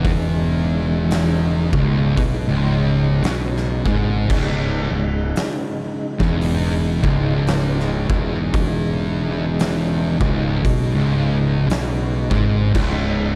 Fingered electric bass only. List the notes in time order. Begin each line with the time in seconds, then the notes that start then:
Already playing: E1
1.73 C#1
2.18 B1
2.47 C#1
3.22 B1
3.86 G#1
4.30 C#1
4.91 C#1
6.20 E1
7.04 C#1
8.10 E1
10.21 C#1
10.65 B1
10.94 C#1
11.68 B1
12.31 G#1
12.75 C#1